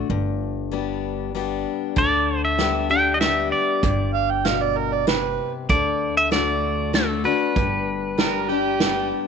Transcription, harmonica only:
4.14 F5
4.30 G5
4.46 F5
4.62 D5
4.77 A#4
4.93 D5
5.08 B4
8.19 A#4
8.50 G4

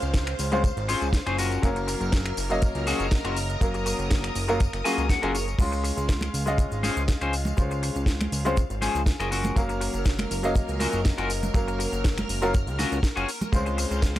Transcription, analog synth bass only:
0.03 C#2
0.39 C#2
0.77 G#1
1.02 C#2
1.27 F#1
1.63 F#1
2.01 F#1
2.37 F#1
2.75 C#2
3.00 F#1
3.25 F#1
3.61 F#1
3.99 F#1
4.35 F#1
4.73 F#1
4.98 C#2
5.23 F#1
5.59 C#2
5.97 C#2
6.34 C#2
6.72 G#1
6.97 C#2
7.21 C#2
7.58 C#2
7.96 C#2
8.32 C#2
8.70 G#1
8.95 C#2
9.20 F#1
9.56 F#1
9.94 F#1
10.31 F#1
10.69 C#2
10.93 F#1
11.18 F#1
11.54 F#1
11.92 F#1
12.29 F#1
12.67 C#2
12.92 C#2
13.17 F#1
13.53 C#2
13.91 C#2

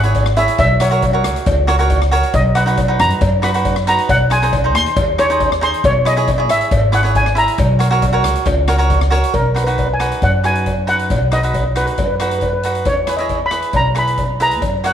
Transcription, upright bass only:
Already playing: G#1
0.59 B1
1.25 C#2
1.47 C#2
2.34 B1
3.00 F#2
3.21 F#2
4.09 B1
4.74 D#2
4.97 D#2
5.84 B1
6.49 G#1
6.71 G#1
7.58 B1
8.25 C#2
8.46 C#2
9.34 B1
10.22 F#2
11.10 B1
11.98 F#2
12.86 E2
13.73 B1
14.62 F#2

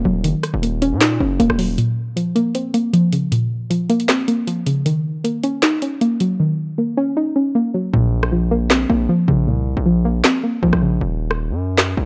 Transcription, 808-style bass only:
0.05 D#1
0.24 F#1
0.54 D#1
0.92 A#2
1.20 F#1
1.40 D#1
1.50 D#1
7.93 A#1
8.90 A#1
9.28 A#1
9.47 C2
9.77 A#1
10.63 A#1
10.73 A#1
11.01 D#1
11.50 F#2
11.97 A#1

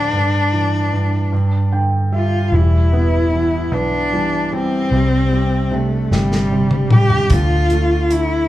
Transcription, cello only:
Already playing: D4
2.15 F4
2.54 E4
3.74 D4
4.54 C4
5.74 A3
6.15 G3
6.93 G4
7.32 F4
8.13 E4

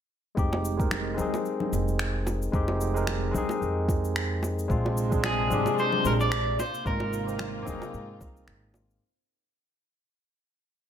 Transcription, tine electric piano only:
0.35 G#3 C4 D#4 G4
0.77 G#3 C4 D#4 A#4
1.15 G#3 C4
1.19 D#4 G#4
2.52 G#3 C4 D#4 G4
2.94 G#3 C4 D#4 A#4
3.31 G#3 C4
3.36 D#4 G#4
4.68 G#3 C4 D4 F4
5.10 G#3 C4 D4 G#4
5.47 G#3 C4
5.52 D4 G4
6.85 A#3 C4 D#4 F4
7.26 A#3 C4 D#4 A#4
7.63 A#3 C4
7.67 D#4 G#4

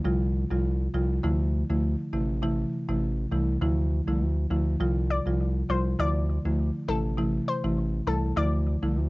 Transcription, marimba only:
0.05 C3 F3 G3 F4
0.51 C3 F3 G3 F4
0.94 C3 F3 G3 F4
1.23 D3 F3 A3 E4
1.70 D3 F3 A3 E4
2.13 C3 E3 A3 E4
2.42 C3 E3 A3 E4
2.88 C3 E3 A3 E4
3.32 C3 E3 A3 E4
3.61 D3 F3 A3 E4
4.07 D3 F3 A3 E4
4.50 D3 F3 A3 E4
4.80 C3 F3 G3 F4
5.26 C3 F3 G3 F4
5.69 C3 F3 G3 F4
5.99 D3 F3 A3 E4
6.45 D3 F3 A3 E4
6.88 C3 E3 A3 E4
7.18 C3 E3 A3 E4
7.64 C3 E3 A3 E4
8.07 C3 E3 A3 E4
8.37 D3 F3 A3 E4
8.82 D3 F3 A3 E4

